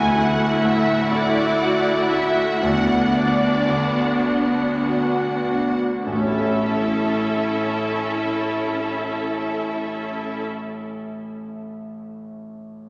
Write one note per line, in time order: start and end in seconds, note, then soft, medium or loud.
0.00 2.59 D2 soft
0.00 2.63 D3 medium
0.00 2.63 A3 medium
0.00 2.59 E4 soft
0.00 2.68 E4 soft
0.00 5.76 F#4 soft
0.00 2.26 E5 soft
0.00 5.76 F#5 soft
0.00 0.15 G#5 medium
0.15 2.12 D4 soft
0.15 0.92 E4 soft
0.15 0.63 F#5 medium
0.63 1.41 A2 soft
0.63 1.61 F#4 soft
0.63 1.11 E5 medium
1.11 1.91 E4 soft
1.11 2.10 D5 medium
1.11 4.24 D5 soft
1.61 2.43 F#4 soft
2.12 3.15 D4 soft
2.12 2.63 E4 soft
2.12 2.63 E5 medium
2.62 6.02 D2 soft
2.62 6.11 D3 soft
2.62 5.80 B3 medium
2.62 5.76 D4 medium
2.62 3.14 F#5 medium
3.15 4.03 D4 soft
3.15 5.44 D4 soft
3.15 4.25 D5 medium
3.69 4.60 D3 soft
3.69 4.82 B4 soft
4.25 5.20 D4 soft
4.25 6.11 D5 soft
4.84 5.82 F#4 soft
4.84 6.11 B4 soft
5.45 6.06 D4 soft
5.45 6.11 D4 soft
6.04 10.49 A1 soft
6.04 10.48 A2 soft
6.04 10.45 C#4 soft
6.04 10.45 E4 soft
6.04 10.44 A4 soft
6.04 10.46 A4 soft
6.04 10.45 E5 soft
6.13 10.55 A2 soft
6.13 10.55 A3 soft
6.20 10.62 C#4 soft
6.20 10.63 C#4 soft
6.27 10.69 E4 soft
6.27 10.70 E4 soft
6.34 10.76 A4 soft
6.41 10.83 E5 soft